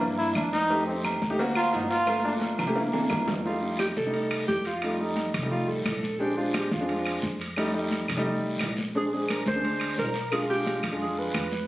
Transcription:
Already playing: upright bass G2, grand piano A#3 D4 E4
0.01 cowbell, high conga, low conga, long guiro
0.18 trombone E4, high conga, low agogo
0.35 upright bass F2, trombone D4, cowbell, high conga, low agogo, short guiro, claves
0.53 trombone D#4, cowbell, high conga, short guiro
0.70 grand piano A3 D#4 G4, cowbell, high conga, low agogo, long guiro
0.87 grand piano A3 D#4 G4, trombone C4, high conga
1.05 cowbell, high conga, low agogo, short guiro, claves
1.22 upright bass D2, high conga, short guiro
1.30 grand piano A3 D#4 G4
1.39 grand piano A#3 C4 F#4, cowbell, high conga, low agogo, long guiro
1.55 trombone F4, high conga, low agogo, claves
1.73 upright bass G1, trombone D#4, cowbell, high conga, low timbale, low agogo, short guiro
1.90 trombone F4, cowbell, short guiro
2.07 grand piano A3 A#3 F4, cowbell, high conga, low agogo, long guiro, claves
2.24 grand piano A3 A#3 F4, trombone D4, high conga
2.41 cowbell, high conga, low agogo, short guiro
2.59 upright bass C2, cowbell, high bongo, high conga, low conga, low agogo, short guiro, claves
2.67 grand piano A3 A#3 G4
2.75 grand piano A#3 D4 E4, cowbell, high bongo, high conga, low conga, long guiro
2.93 low bongo, high conga, high timbale, low agogo
3.10 upright bass F2, cowbell, low bongo, high conga, low timbale, low agogo, short guiro, claves
3.27 cowbell, low bongo, high conga, low timbale, short guiro
3.45 grand piano G3 A3 D#4, alto saxophone F4, high conga, long guiro
3.62 grand piano G3 A3 D#4, high conga
3.79 alto saxophone G4, high conga, high timbale, short guiro, claves
3.97 upright bass C2, alto saxophone A4, high conga, short guiro
4.06 grand piano G3 A3 D#4
4.14 high conga, high timbale, long guiro
4.31 high conga, high timbale, claves
4.48 upright bass F2, alto saxophone G4, high conga, low timbale, short guiro
4.65 alto saxophone F4, high conga, high timbale, short guiro
4.82 grand piano G3 A3 D#4, high conga, high timbale, long guiro, claves
4.99 grand piano G3 A3 D#4, alto saxophone D#4, high conga
5.17 high conga, high timbale, short guiro
5.34 upright bass C2, high conga, low conga, high timbale, short guiro, claves
5.42 grand piano G3 A3 D#4
5.51 alto saxophone F4, high conga, low conga, long guiro
5.68 alto saxophone A4, high conga
5.85 upright bass A#1, high conga, high timbale, low timbale, short guiro, claves
6.03 high conga, short guiro
6.20 grand piano G#3 C4 D4, alto saxophone G4, high conga, long guiro
6.36 grand piano G#3 C4 D4, alto saxophone F4, high conga
6.54 alto saxophone G4, high conga, high timbale, short guiro, claves
6.71 upright bass F2, alto saxophone F4, high conga, short guiro
6.80 grand piano G#3 C4 D4
6.88 high conga, high timbale, long guiro
7.06 high conga, high timbale, claves
7.22 upright bass F2, high conga, short guiro
7.40 high conga, high timbale, short guiro
7.56 grand piano G3 A3 D#4, high conga, high timbale, long guiro, claves
7.74 grand piano G3 A3 D#4, high conga
7.91 high conga, high timbale, short guiro
8.08 upright bass C2, high conga, low conga, high timbale, short guiro, claves
8.17 grand piano G3 A3 D#4
8.25 high conga, low conga, long guiro
8.43 high conga
8.59 upright bass A#1, high conga, high timbale, low timbale, short guiro, claves
8.77 high conga, short guiro
8.95 grand piano G#3 C4 D4, alto saxophone G#4, high conga, long guiro
9.12 grand piano G#3 C4 D4, alto saxophone G#4, high conga
9.29 alto saxophone A#4, high conga, high timbale, short guiro, claves
9.46 upright bass D2, alto saxophone C5, high conga, short guiro
9.55 grand piano G#3 C4 D4
9.64 high conga, high timbale, long guiro
9.80 high conga, high timbale, claves
9.97 upright bass B1, alto saxophone A#4, high conga, low timbale, short guiro
10.14 high conga, high timbale, short guiro
10.32 grand piano G#3 D4 F4, alto saxophone G#4, high conga, high timbale, long guiro, claves
10.49 grand piano G#3 D4 F4, alto saxophone G4, high conga
10.66 high conga, high timbale, short guiro
10.83 upright bass F2, high conga, low conga, high timbale, short guiro, claves
10.92 grand piano G#3 D4 F4
11.00 alto saxophone G#4, high conga, low conga, long guiro
11.18 alto saxophone B4, high conga
11.34 upright bass F2, high conga, high timbale, short guiro, claves
11.52 high conga, short guiro

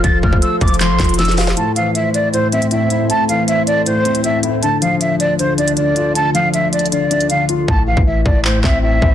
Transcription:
Already playing: grand piano F3 A3 F4 F5, ambient pad F3 F4 A4 C5
0.04 808-style bass F1, grand piano F3, flute A6, kick, closed hi-hat
0.23 808-style bass F1, grand piano A3, flute F6, kick
0.33 kick
0.42 flute E6, closed hi-hat
0.61 808-style bass F1, flute D6, kick, closed hi-hat
0.68 closed hi-hat
0.74 closed hi-hat
0.80 grand piano F3, flute C6, clap, closed hi-hat
0.90 808-style bass A1
1.00 808-style bass F1, grand piano F4, kick, clap, closed hi-hat
1.04 closed hi-hat
1.09 closed hi-hat
1.14 closed hi-hat
1.19 grand piano F3, flute E6, snare, closed hi-hat
1.25 snare, closed hi-hat
1.31 closed hi-hat
1.37 grand piano F5, snare, open hi-hat
1.47 snare
1.57 grand piano A2, ambient pad A2 A3 E4 C5, flute A5, closed hi-hat
1.76 grand piano E3, flute F5, closed hi-hat
1.95 flute E5, closed hi-hat
2.14 flute D5, closed hi-hat
2.33 grand piano A2, flute C5, closed hi-hat
2.52 grand piano C4, flute E5, closed hi-hat
2.62 closed hi-hat
2.71 grand piano A2, flute E5, closed hi-hat
2.90 grand piano E4, closed hi-hat
3.10 grand piano A2, flute A5, closed hi-hat
3.29 grand piano E3, flute F5, closed hi-hat
3.48 flute E5, closed hi-hat
3.67 flute D5, closed hi-hat
3.86 grand piano A2, flute C5, closed hi-hat
4.05 grand piano C4, closed hi-hat
4.15 closed hi-hat
4.24 grand piano A2, flute E5, closed hi-hat
4.43 grand piano E4, closed hi-hat
4.62 ambient pad D2 D3 F4 A4, grand piano D3, flute A5, closed hi-hat
4.82 grand piano F3, flute F5, closed hi-hat
5.01 flute E5, closed hi-hat
5.20 flute D5, closed hi-hat
5.39 grand piano D3, flute C5, closed hi-hat
5.58 grand piano D4, flute D5, closed hi-hat
5.68 closed hi-hat
5.77 grand piano D3, flute D5, closed hi-hat
5.96 grand piano F4, closed hi-hat
6.15 grand piano D3, flute A5, closed hi-hat
6.34 grand piano F3, flute F5, closed hi-hat
6.54 flute E5, closed hi-hat
6.73 flute D5, closed hi-hat
6.79 closed hi-hat
6.86 closed hi-hat
6.92 grand piano D3, flute D5, closed hi-hat
7.11 grand piano D4, closed hi-hat
7.21 closed hi-hat
7.30 grand piano D3, flute F5, closed hi-hat
7.49 grand piano F4, closed hi-hat
7.68 808-style bass A1, grand piano A2, flute A5, kick
7.87 grand piano E3, flute F5
7.97 808-style bass A1, kick
8.06 flute E5
8.26 808-style bass A1, flute D5, kick
8.45 grand piano A2, flute C5, clap
8.64 808-style bass A1, grand piano C4, flute E5, kick, clap
8.83 grand piano A2, flute E5
9.02 808-style bass A1, grand piano E4, kick

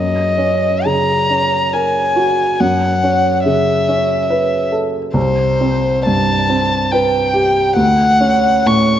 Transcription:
Already playing: grand piano F#2, violin D#5
0.38 grand piano C#4
0.86 grand piano C#3, violin A#5
1.30 grand piano C#4
1.73 grand piano A#4, violin G#5
2.16 grand piano F#4
2.60 grand piano F#2, violin F#5
3.04 grand piano C#4
3.46 grand piano C#3, violin E5
3.89 grand piano C#4
4.30 grand piano B4
4.72 grand piano A4
5.14 grand piano C2, violin C5
5.61 grand piano C4
6.06 grand piano G2, violin A5
6.49 grand piano C4
6.91 grand piano B4, violin G5
7.34 grand piano G4
7.76 grand piano D2, violin F#5
8.21 grand piano C#4
8.66 grand piano A2, violin C#6

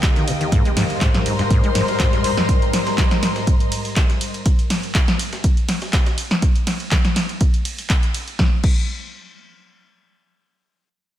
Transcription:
Already playing: ambient pad D#2 D3 G4 F5, string section A#4 D#5 G5
0.03 kick, snare, clap, closed hi-hat
0.16 acid bass D#3, snare, closed hi-hat
0.28 acid bass A#2, closed hi-hat, open hi-hat, ride
0.41 acid bass D#3, closed hi-hat
0.52 acid bass G#2, ambient pad G#2 G3 A#4 C5, kick, closed hi-hat
0.65 acid bass G#3, closed hi-hat
0.77 acid bass G#2, snare, closed hi-hat, open hi-hat, ride
0.89 string section C6, closed hi-hat
1.01 acid bass G#2, kick, snare, clap, closed hi-hat
1.10 string section A#5
1.14 acid bass G#2, snare, closed hi-hat
1.26 acid bass G#2, closed hi-hat, open hi-hat, ride
1.39 acid bass G2, snare, closed hi-hat
1.51 acid bass G#2, kick, closed hi-hat
1.64 acid bass G#3, closed hi-hat
1.75 acid bass G#2, snare, closed hi-hat, open hi-hat, ride
1.88 snare, closed hi-hat
2.00 acid bass G#2, kick, snare, clap, closed hi-hat
2.13 acid bass G#2, snare, closed hi-hat
2.24 acid bass G#2, open hi-hat, ride
2.37 acid bass G2, snare, closed hi-hat
2.49 kick, closed hi-hat
2.62 closed hi-hat
2.73 snare, closed hi-hat, open hi-hat, ride
2.87 snare, closed hi-hat
2.98 kick, snare, clap, closed hi-hat
3.11 snare, closed hi-hat
3.23 snare, closed hi-hat, open hi-hat, ride
3.36 snare, closed hi-hat
3.47 kick, closed hi-hat
3.60 closed hi-hat
3.72 closed hi-hat, open hi-hat, ride
3.85 open hi-hat
3.96 kick, snare, clap, closed hi-hat
4.10 snare, closed hi-hat
4.21 closed hi-hat, open hi-hat, ride
4.34 closed hi-hat
4.46 kick, closed hi-hat
4.59 closed hi-hat
4.70 snare, closed hi-hat, open hi-hat, ride
4.83 closed hi-hat
4.95 kick, snare, clap, closed hi-hat
5.08 snare, closed hi-hat
5.19 closed hi-hat, open hi-hat, ride
5.33 snare, closed hi-hat
5.44 kick, closed hi-hat
5.57 closed hi-hat
5.69 snare, closed hi-hat, open hi-hat, ride
5.82 snare, closed hi-hat
5.93 kick, snare, clap, closed hi-hat
6.06 snare, closed hi-hat
6.18 open hi-hat, ride
6.31 snare, closed hi-hat
6.42 kick, closed hi-hat
6.56 closed hi-hat
6.67 snare, open hi-hat, ride
6.80 closed hi-hat
6.91 kick, snare, clap, closed hi-hat
7.05 snare, closed hi-hat
7.16 snare, open hi-hat, ride
7.29 closed hi-hat
7.41 kick, closed hi-hat
7.54 closed hi-hat
7.65 open hi-hat, ride
7.78 open hi-hat
7.90 kick, clap, closed hi-hat
8.03 closed hi-hat
8.14 open hi-hat, ride
8.28 closed hi-hat
8.39 kick, snare
8.64 kick, crash

